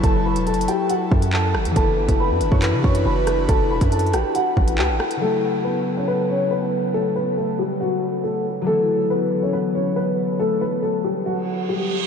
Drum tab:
HH |x--------x--x-x-x-x-----x--------x-----------x--|x--------x--------x-----x--------x--------x-----|x--------x--x-x-x-x-----x--------x-----------x--|------------------------------------------------|
CP |------------------------------------x-----------|------------------------x-----------------------|------------------------------------x-----------|------------------------------------------------|
SD |------------------------------------------r-----|------------------------------------------r-----|------------------r-----------------------r-----|------------------------------------------------|
BD |o-----------------------------o-----------------|o--------o-----------o--------o-----------------|o--------o--------------------o-----------------|------------------------------------------------|

HH |------------------------------------------------|------------------------------------------------|------------------------------------------------|
CP |------------------------------------------------|------------------------------------------------|------------------------------------------------|
SD |------------------------------------------------|------------------------------------------------|------------------------------------------------|
BD |------------------------------------------------|------------------------------------------------|------------------------------------------------|